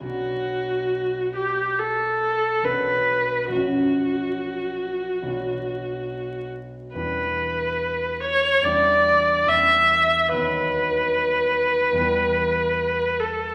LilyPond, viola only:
\new Staff \with { instrumentName = "Viola" } { \time 4/4 \key b \minor \tempo 4 = 71 fis'4. g'8 a'4 b'4 | fis'2.~ fis'8 r8 | b'4. cis''8 d''4 e''4 | b'2.~ b'8 a'8 | }